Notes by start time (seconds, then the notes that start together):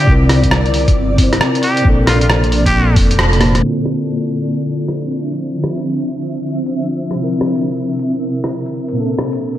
Already playing: C4 G4 D5
0.04 C2 C3 C4, kick
0.09 E4 A#4
0.29 cross-stick, open hi-hat
0.44 kick, closed hi-hat
0.51 cross-stick
0.66 closed hi-hat
0.74 open hi-hat
0.88 kick, closed hi-hat
0.96 G1
1.15 C3 C4, kick, open hi-hat
1.20 E4 C5
1.33 cross-stick, closed hi-hat
1.41 cross-stick
1.55 closed hi-hat
1.63 G4, open hi-hat
1.77 closed hi-hat
1.81 A#1 A#2 A#3, kick
1.87 D4 A4
2.05 F4 A4, cross-stick, open hi-hat
2.14 A#3
2.21 F4, closed hi-hat
2.30 cross-stick
2.44 closed hi-hat
2.52 open hi-hat
2.66 G4 D5, kick, closed hi-hat
2.96 F1, kick, open hi-hat
3.11 closed hi-hat
3.19 cross-stick
3.33 closed hi-hat
3.39 A#2 A#3 D4, cross-stick, open hi-hat
3.43 C5
3.55 cross-stick, closed hi-hat
3.59 D3 C4
3.65 E4 F4
3.81 C4
3.86 cross-stick
4.00 closed hi-hat
4.19 F3 E5, closed hi-hat
4.44 closed hi-hat
4.88 cross-stick, closed hi-hat
5.11 closed hi-hat
5.33 closed hi-hat
5.64 cross-stick
5.77 closed hi-hat
6.00 closed hi-hat
6.22 closed hi-hat
6.66 closed hi-hat
6.88 closed hi-hat
7.11 cross-stick, closed hi-hat
7.15 C3 C4
7.21 E4 A#4
7.41 cross-stick
7.55 closed hi-hat
7.63 A#4
7.77 closed hi-hat
7.99 closed hi-hat
8.44 cross-stick, closed hi-hat
8.66 closed hi-hat
8.88 closed hi-hat
8.92 A#2 A#3
8.98 D4 A4
9.10 A4
9.19 cross-stick
9.33 closed hi-hat
9.55 closed hi-hat